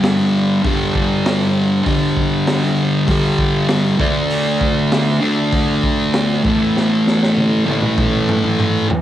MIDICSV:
0, 0, Header, 1, 3, 480
1, 0, Start_track
1, 0, Tempo, 610998
1, 1464, Time_signature, 4, 2, 24, 8
1, 7084, End_track
2, 0, Start_track
2, 0, Title_t, "Distorted electric guitar"
2, 0, Program_c, 0, 30
2, 0, Note_on_c, 0, 43, 87
2, 0, Note_on_c, 0, 50, 84
2, 0, Note_on_c, 0, 55, 108
2, 485, Note_off_c, 0, 43, 0
2, 495, Note_on_c, 0, 43, 82
2, 499, Note_off_c, 0, 50, 0
2, 508, Note_off_c, 0, 55, 0
2, 509, Note_on_c, 0, 50, 85
2, 524, Note_on_c, 0, 55, 87
2, 1437, Note_off_c, 0, 43, 0
2, 1447, Note_on_c, 0, 43, 88
2, 1451, Note_off_c, 0, 50, 0
2, 1459, Note_off_c, 0, 55, 0
2, 1463, Note_on_c, 0, 50, 99
2, 1475, Note_on_c, 0, 55, 98
2, 2399, Note_off_c, 0, 43, 0
2, 2408, Note_off_c, 0, 50, 0
2, 2411, Note_on_c, 0, 43, 69
2, 2413, Note_off_c, 0, 55, 0
2, 2425, Note_on_c, 0, 50, 84
2, 2437, Note_on_c, 0, 55, 92
2, 3113, Note_off_c, 0, 50, 0
2, 3121, Note_off_c, 0, 43, 0
2, 3123, Note_on_c, 0, 50, 90
2, 3134, Note_off_c, 0, 55, 0
2, 3138, Note_on_c, 0, 57, 90
2, 3148, Note_on_c, 0, 62, 101
2, 4077, Note_off_c, 0, 50, 0
2, 4081, Note_off_c, 0, 62, 0
2, 4090, Note_on_c, 0, 62, 100
2, 4105, Note_off_c, 0, 57, 0
2, 4108, Note_on_c, 0, 57, 78
2, 4122, Note_on_c, 0, 50, 75
2, 5041, Note_off_c, 0, 62, 0
2, 5049, Note_off_c, 0, 57, 0
2, 5057, Note_off_c, 0, 50, 0
2, 5060, Note_on_c, 0, 45, 93
2, 5076, Note_on_c, 0, 52, 86
2, 5093, Note_on_c, 0, 57, 103
2, 6005, Note_off_c, 0, 57, 0
2, 6007, Note_off_c, 0, 45, 0
2, 6014, Note_on_c, 0, 57, 84
2, 6015, Note_off_c, 0, 52, 0
2, 6028, Note_on_c, 0, 52, 77
2, 6045, Note_on_c, 0, 45, 69
2, 6967, Note_off_c, 0, 57, 0
2, 6974, Note_off_c, 0, 52, 0
2, 6982, Note_off_c, 0, 45, 0
2, 7084, End_track
3, 0, Start_track
3, 0, Title_t, "Drums"
3, 27, Note_on_c, 9, 46, 64
3, 29, Note_on_c, 9, 38, 115
3, 105, Note_off_c, 9, 46, 0
3, 108, Note_off_c, 9, 38, 0
3, 506, Note_on_c, 9, 46, 56
3, 507, Note_on_c, 9, 36, 117
3, 585, Note_off_c, 9, 46, 0
3, 586, Note_off_c, 9, 36, 0
3, 747, Note_on_c, 9, 36, 81
3, 826, Note_off_c, 9, 36, 0
3, 989, Note_on_c, 9, 46, 64
3, 991, Note_on_c, 9, 38, 118
3, 1067, Note_off_c, 9, 46, 0
3, 1070, Note_off_c, 9, 38, 0
3, 1464, Note_on_c, 9, 36, 116
3, 1467, Note_on_c, 9, 46, 60
3, 1542, Note_off_c, 9, 36, 0
3, 1545, Note_off_c, 9, 46, 0
3, 1702, Note_on_c, 9, 36, 83
3, 1780, Note_off_c, 9, 36, 0
3, 1942, Note_on_c, 9, 46, 67
3, 1944, Note_on_c, 9, 38, 102
3, 2020, Note_off_c, 9, 46, 0
3, 2023, Note_off_c, 9, 38, 0
3, 2417, Note_on_c, 9, 46, 66
3, 2419, Note_on_c, 9, 36, 114
3, 2495, Note_off_c, 9, 46, 0
3, 2498, Note_off_c, 9, 36, 0
3, 2659, Note_on_c, 9, 36, 92
3, 2738, Note_off_c, 9, 36, 0
3, 2895, Note_on_c, 9, 46, 68
3, 2898, Note_on_c, 9, 38, 112
3, 2974, Note_off_c, 9, 46, 0
3, 2976, Note_off_c, 9, 38, 0
3, 3139, Note_on_c, 9, 36, 110
3, 3217, Note_off_c, 9, 36, 0
3, 3381, Note_on_c, 9, 46, 66
3, 3459, Note_off_c, 9, 46, 0
3, 3621, Note_on_c, 9, 36, 93
3, 3700, Note_off_c, 9, 36, 0
3, 3864, Note_on_c, 9, 46, 65
3, 3866, Note_on_c, 9, 38, 114
3, 3942, Note_off_c, 9, 46, 0
3, 3945, Note_off_c, 9, 38, 0
3, 4339, Note_on_c, 9, 46, 56
3, 4341, Note_on_c, 9, 36, 105
3, 4418, Note_off_c, 9, 46, 0
3, 4420, Note_off_c, 9, 36, 0
3, 4582, Note_on_c, 9, 36, 82
3, 4660, Note_off_c, 9, 36, 0
3, 4820, Note_on_c, 9, 46, 57
3, 4822, Note_on_c, 9, 38, 126
3, 4899, Note_off_c, 9, 46, 0
3, 4901, Note_off_c, 9, 38, 0
3, 5064, Note_on_c, 9, 36, 111
3, 5143, Note_off_c, 9, 36, 0
3, 5317, Note_on_c, 9, 38, 65
3, 5395, Note_off_c, 9, 38, 0
3, 5556, Note_on_c, 9, 38, 73
3, 5635, Note_off_c, 9, 38, 0
3, 5680, Note_on_c, 9, 38, 67
3, 5759, Note_off_c, 9, 38, 0
3, 5794, Note_on_c, 9, 48, 75
3, 5872, Note_off_c, 9, 48, 0
3, 6033, Note_on_c, 9, 48, 86
3, 6112, Note_off_c, 9, 48, 0
3, 6147, Note_on_c, 9, 47, 78
3, 6226, Note_off_c, 9, 47, 0
3, 6268, Note_on_c, 9, 36, 117
3, 6272, Note_on_c, 9, 47, 84
3, 6346, Note_off_c, 9, 36, 0
3, 6351, Note_off_c, 9, 47, 0
3, 6511, Note_on_c, 9, 45, 93
3, 6590, Note_off_c, 9, 45, 0
3, 6629, Note_on_c, 9, 45, 76
3, 6708, Note_off_c, 9, 45, 0
3, 6753, Note_on_c, 9, 45, 99
3, 6832, Note_off_c, 9, 45, 0
3, 6993, Note_on_c, 9, 43, 109
3, 7071, Note_off_c, 9, 43, 0
3, 7084, End_track
0, 0, End_of_file